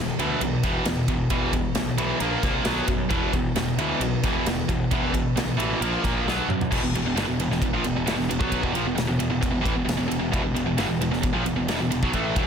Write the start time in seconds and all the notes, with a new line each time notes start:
Already playing: E1 E2 B2
0.19 D2 E2 B2 E3, ride
0.41 B1 E2 B2, ride
0.63 E1 E2 B2 E3, kick, snare, ride
0.85 E1 E2 B2, snare, ride
1.08 E1 E2 B2, kick, ride
1.30 E1 E2 B2 E3, kick, ride
1.53 E2 B2, kick, ride
1.75 B1 E2 B2, snare, ride
1.97 B1 E2 B2 E3, ride
2.20 A#1 A#2 F3 A#3, ride
2.43 C2 A#2 F3 A#3, kick, snare, ride
2.65 B1 B2 F#3 B3, snare, ride
2.87 F#2 B2 F#3, kick, ride
3.09 E1 E2 B2 E3, kick, ride
3.33 E1 E2 B2, kick, ride
3.55 E1 E2 B2, snare, ride
3.77 D2 E2 B2 E3, ride
4.00 B1 E2 B2, ride
4.24 E1 E2 B2 E3, kick, snare, ride
4.46 E1 E2 B2, snare, ride
4.69 E1 E2 B2, kick, ride
4.91 E1 E2 B2 E3, kick, ride
5.14 E2 B2, kick, ride
5.35 B1 E2 B2, snare, ride
5.58 A1 E2 B2 E3, ride
5.81 A#1 A#2 F3 A#3, ride
6.03 A#1 A#2 F3 A#3, kick, snare, ride
6.25 B1 B2 F#3 B3, snare
6.48 F#2 B2 F#3, mid tom
6.61 floor tom
6.71 E1 E2 B2, kick, crash
6.82 E1 E2 B2
6.92 E1 E2 B2, ride
7.04 E1 E2 B2
7.16 G1 G2 D3, snare, ride
7.28 E1 E2 B2
7.37 E1 E2 B2, ride
7.49 E1 E2 B2, snare
7.62 E1 E2 B2, kick, ride
7.72 A#1 A#2 F3
7.84 E1 E2 B2, ride
7.96 E1 E2 B2
8.06 E1 E2 B2, snare, ride
8.17 E1 E2 B2
8.29 E1 E2 B2, ride
8.39 B1 B2 F#3 B3, kick
8.52 kick, ride
8.62 E1 E2 B2, kick
8.73 A#1 A#2 F3, ride
8.85 E1 E2 B2
8.95 E1 E2 B2, snare, ride
9.07 E1 E2 B2
9.19 E1 E2 B2, ride
9.30 E1 E2 B2
9.41 E1 E2 B2, kick, ride
9.51 E1 E2 B2
9.61 A1 A2 E3
9.66 kick, ride
9.75 E1 E2 B2
9.85 E1 E2 B2, ride
9.89 snare
9.97 E1 E2 B2
10.08 E1 E2 B2, ride
10.20 E1 E2 B2
10.32 E1 E2 B2, kick, ride
10.43 E1 E2 B2
10.54 E1 E2 B2, ride
10.66 E1 E2 B2
10.78 G1 G2 D3, snare, ride
10.89 E1 E2 B2
11.01 E1 E2 B2, ride
11.11 E1 E2 B2, snare
11.23 E1 E2 B2, kick, ride
11.33 A#1 A#2 F3
11.44 E1 E2 B2, ride
11.56 E1 E2 B2
11.68 E1 E2 B2, snare, ride
11.80 E1 E2 B2
11.90 E1 E2 B2, ride
12.02 B1 B2 F#3, kick
12.13 A1 A2 E3 A3, kick, ride
12.36 E1 E2 B2 E3, kick, ride